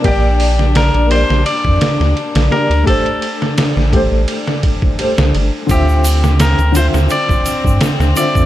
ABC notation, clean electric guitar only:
X:1
M:4/4
L:1/8
Q:"Swing 16ths" 1/4=85
K:Dm
V:1 name="Clean electric guitar"
G2 B c d3 B | A2 z6 | G2 B c d3 d |]